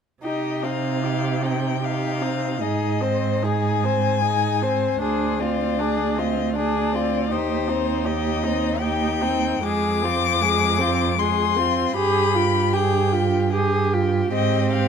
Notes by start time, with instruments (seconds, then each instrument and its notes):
0.23 cello C3, viola D#4, violin G4 D#5
0.63 viola C4, violin D#4 F5
1.03 viola D#4, violin G4
1.43 viola C4, violin D#4 G5
1.81 viola D#4, violin G4 F5
2.21 viola C4, violin D#4
2.60 cello G#2, viola D#4, violin G#4 D#5
3.01 viola C4, violin C5
3.43 viola D#4, violin G#4 G#5
3.84 viola C4, violin C5
4.22 viola D#4, violin G#4
4.62 viola C4, violin C5
5.01 cello D2, viola D4, violin G#4 C5
5.39 viola C4, violin F4 D5
5.79 viola D4, violin G#4
6.18 viola C4, violin F4 D#5
6.56 viola D4, violin G#4 D5
6.93 viola C4, violin F4
7.31 cello D#2, viola D#4, violin G4 C5
7.68 viola C4, violin D#4
8.05 viola D#4, violin G4 D#5
8.43 viola C4, violin D#4
8.81 viola D#4, violin G4 G5
9.21 viola C4, violin D#4
9.63 cello F2, viola G#3, violin G#4 D6
10.02 viola C4, violin F4
10.41 viola G#3, violin G#4
10.79 viola C4, violin F4
11.17 viola G#3, violin G#4 C6
11.57 viola C4, violin F4
11.96 cello G2, viola G4, violin G#4 B5
12.34 viola F4, violin G4
12.73 viola G4, violin G#4 G5
13.12 viola F4, violin G4
13.52 viola G4, violin G#4
13.93 viola F4, violin G4
14.32 cello G#2, viola C4, violin G4 D#5
14.73 violin F5